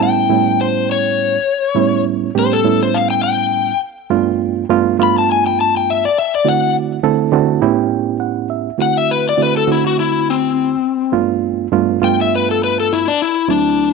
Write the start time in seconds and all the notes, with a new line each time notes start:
0.00 A2 G3 B3 C#4 E4 G5
0.29 A2 G3 B3 C#4 E4
0.61 C5
0.92 C#5
1.75 A2 G3 B3 C#4 E4
2.35 A2 G3 B3 C#4 G4
2.39 C5
2.53 A4
2.64 A2 G3 B3 C#4 E4
2.83 C5
2.94 F5
3.10 G5
3.24 G5
4.10 G2 A3 B3 D4 F4
4.69 G2 A3 B3 D4 F4
4.99 G2 A3 B3 D4 F4
5.03 B5
5.18 A5
5.32 G#5
5.47 G5
5.61 A5
5.77 G5
5.90 E5
6.05 D5
6.18 E5
6.35 D5
6.45 D3 A3 C4 E4 F#4 F#5
7.03 D3 A3 C4 E4 A4
7.32 D3 A3 C4 E4 F#4 A5
7.61 A2 B3 C#4 E4 G4 G5
8.20 F#5
8.50 E5
8.78 D3 A3 C4 E4 F#4 F#5
8.98 E5
9.11 B4
9.29 D5
9.37 D3 A3 C4 E4 F#4
9.43 B4
9.57 A4
9.67 D3 A3 C4 E4 F#4
9.72 E4
9.87 F#4
10.00 E4
10.30 C4
11.12 G2 A3 B3 D4 F4
11.72 G2 A3 B3 D4 F4
12.01 G2 A3 B3 D4 F4 G5
12.21 E5
12.36 B4
12.51 A4
12.64 B4
12.80 A4
12.93 E4
13.08 D4
13.22 E4
13.48 D2 F#3 A3 C4 D4 E4